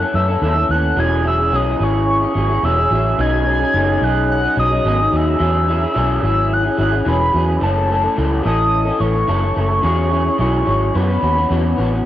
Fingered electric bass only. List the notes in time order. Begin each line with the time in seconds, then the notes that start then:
0.14 F#2
0.42 D#2
0.69 D#2
0.97 E1
1.52 B1
1.80 G#1
2.35 G#1
2.63 E1
2.91 A1
3.18 B1
3.74 F#1
4.02 B1
4.57 B1
4.85 G#1
5.12 D#2
5.40 E2
5.96 B1
6.23 G#1
6.78 G#1
7.06 E1
7.34 E2
7.62 F#1
8.18 C#2
8.45 A1
9.00 A1
9.28 F#1
9.57 F#1
9.84 E2
10.39 B1
10.67 G#1
10.95 F#2
11.22 D#2
11.50 E2
11.78 A1